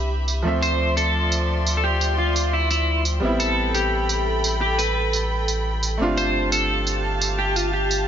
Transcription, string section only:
0.00 0.42 G4 medium
0.00 3.18 E5 medium
0.00 0.42 B5 medium
0.45 3.20 F3 medium
0.45 3.20 D5 medium
0.45 3.20 C6 medium
3.22 5.97 A4 medium
3.22 5.97 G5 medium
3.22 5.97 B5 medium
6.00 8.08 G4 medium
6.00 8.08 F5 medium
6.00 8.08 A5 medium

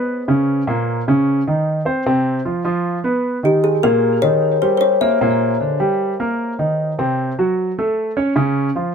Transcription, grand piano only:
0.00 0.21 B3 medium
0.00 0.22 B4 medium
0.28 0.61 C#3 medium
0.28 0.61 C#4 medium
0.67 1.00 A#2 medium
0.67 1.00 A#3 medium
1.08 1.40 C#3 medium
1.08 1.40 C#4 medium
1.47 1.80 D#3 medium
1.47 1.80 D#4 medium
1.85 2.02 C4 medium
1.85 2.02 C5 medium
2.06 2.39 C3 medium
2.06 2.39 C4 medium
2.45 2.62 F3 medium
2.45 2.62 F4 medium
2.65 2.97 F3 medium
2.65 2.97 F4 medium
3.04 3.37 B3 medium
3.04 3.37 B4 medium
3.43 3.76 D#3 medium
3.43 3.76 D#4 medium
3.84 4.16 A#2 medium
3.84 4.16 A#3 medium
4.23 4.55 D#3 medium
4.23 4.55 D#4 medium
4.63 4.95 G3 medium
4.63 4.95 G4 medium
5.01 5.18 A#3 medium
5.01 5.18 A#4 medium
5.21 5.53 A#2 medium
5.21 5.54 A#3 medium
5.61 5.77 D3 medium
5.61 5.77 D4 medium
5.80 6.12 G3 medium
5.80 6.12 G4 medium
6.20 6.52 A#3 medium
6.20 6.52 A#4 medium
6.59 6.91 D#3 medium
6.59 6.91 D#4 medium
6.99 7.31 C3 medium
6.99 7.31 C4 medium
7.39 7.71 F#3 medium
7.39 7.71 F#4 medium
7.79 8.10 A3 medium
7.79 8.10 A4 medium
8.17 8.33 C#4 medium
8.17 8.33 C#5 medium
8.36 8.68 C#3 medium
8.36 8.68 C#4 medium
8.75 8.92 F3 medium
8.75 8.92 F4 medium

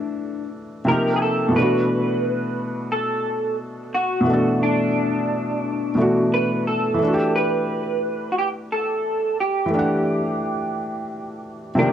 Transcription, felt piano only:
0.00 0.81 E3 medium
0.00 0.83 A3 medium
0.00 0.85 D4 medium
0.00 0.87 A4 medium
0.85 1.54 C3 medium
0.85 1.54 F3 medium
0.85 1.55 A#3 medium
0.90 1.56 D#4 medium
0.90 1.57 G4 medium
1.48 4.19 B2 medium
1.48 4.22 E3 medium
1.55 4.23 A3 medium
1.55 4.25 D4 medium
1.62 4.27 F#4 medium
4.21 5.91 B2 medium
4.21 5.93 E3 medium
4.27 5.94 A3 medium
4.27 5.96 D4 medium
4.33 5.97 A4 medium
5.95 6.99 B2 medium
5.95 6.93 E3 medium
5.95 6.97 A3 medium
6.00 7.01 D4 soft
6.00 7.02 F#4 medium
6.94 9.64 E3 medium
6.99 9.68 A3 medium
7.03 9.70 D4 medium
7.08 7.12 F#4 medium
7.14 9.76 G4 medium
9.66 11.70 E3 medium
9.70 11.72 A3 medium
9.75 11.74 D4 medium
9.79 11.76 F#5 medium
11.75 11.93 C3 medium
11.75 11.93 F3 medium
11.75 11.93 A#3 medium
11.80 11.93 D#3 medium
11.80 11.93 G4 medium

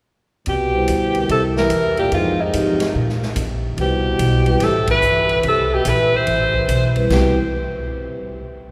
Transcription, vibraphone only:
0.73 1.12 G3 soft
0.73 1.13 E4 soft
0.73 1.13 B4 soft
0.73 1.13 C5 soft
1.15 1.68 G3 soft
1.15 1.68 C4 soft
1.15 1.69 E4 soft
1.15 1.69 A#4 medium
2.11 2.36 F3 medium
2.11 2.37 C4 soft
2.11 2.37 D#4 soft
2.11 2.37 G#4 medium
2.53 2.78 F3 medium
2.53 2.78 C4 medium
2.53 2.78 D#4 soft
2.53 2.78 G4 medium
3.77 4.41 G3 soft
3.77 4.41 E4 soft
3.77 4.41 B4 soft
3.77 4.41 C5 soft
4.46 4.59 G3 medium
4.46 4.59 C4 soft
4.46 4.60 E4 medium
4.46 4.60 B4 medium
6.95 7.09 G3 medium
6.95 7.09 C4 soft
6.95 7.09 E4 medium
6.95 7.09 B4 medium
7.10 7.35 G3 medium
7.10 7.35 C4 medium
7.10 7.35 E4 soft
7.10 7.35 B4 medium

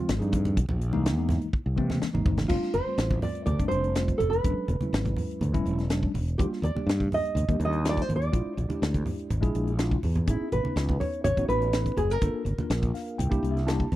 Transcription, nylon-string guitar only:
2.48 2.74 F4 medium
2.74 3.19 C5 medium
3.23 3.45 D5 medium
3.46 3.68 D5 medium
3.68 4.20 C5 medium
4.18 4.32 A4 medium
4.30 5.73 B4 medium
6.38 6.45 G4 medium
6.64 7.09 D5 medium
7.14 7.58 D#5 medium
7.65 7.88 D#5 medium
7.89 8.02 D5 medium
8.02 8.12 C5 medium
8.16 9.54 D5 medium
10.30 10.52 E4 medium
10.52 11.00 B4 medium
11.00 11.23 C#5 medium
11.24 11.47 C#5 medium
11.49 11.99 B4 medium
11.97 12.11 G#4 medium
12.11 13.56 A#4 medium

